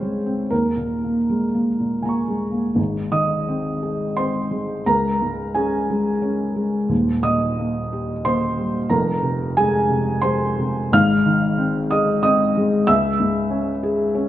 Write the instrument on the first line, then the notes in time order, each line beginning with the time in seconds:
felt piano
Already playing: C#2 G#2 G#3 C4 C5 C#5 F5
0.02 G#3
0.26 C4
0.50 D#2 A#4
0.77 A#2
1.04 A#3
1.30 G#3
1.54 A#3
1.80 A#2
2.02 A#3 G#5 A#5
2.09 C#6
2.28 G#3
2.52 A#3
2.75 G#1 G#2
3.12 D#3 D#5 D#6
3.48 C4
3.83 G#4
4.17 C4 C5 C6
4.51 G#3
4.86 C#2 A#4 A#5
5.22 G#2
5.55 C#4 G#4 G#5
5.90 G#3
6.22 C#4
6.56 G#3
6.89 D#1 D#2
7.23 A#2 D#5 D#6
7.59 A#3
7.93 G4
8.25 A#3 C5 C6
8.57 G3
8.90 F1 F2 A#4 A#5
9.23 C3
9.57 G#3 G#4 G#5
9.90 C3
10.22 G#3 C5 C6
10.59 C3
10.92 G#1 G#2 F5 F6
11.26 D#3
11.58 C4
11.91 G#4 D#5 D#6
12.23 C4 D#5 D#6
12.57 G#3
12.87 C#2 E5 E6
13.20 G#2
13.50 C#4
13.83 G#4
14.15 C#4